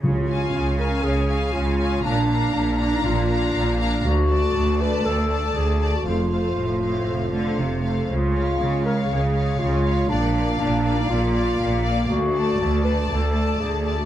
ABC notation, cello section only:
X:1
M:4/4
L:1/8
Q:1/4=120
K:Bbphr
V:1 name="Cello section" clef=bass
D,2 D,2 D,2 D,2 | B,,2 B,,2 B,,2 B,,2 | =D,,2 D,,2 D,,2 D,,2 | F,,2 =A,,3 =D, =C,2 |
D,2 D,2 D,2 D,2 | B,,2 B,,2 B,,2 B,,2 | =D,,2 D,,2 D,,2 D,,2 |]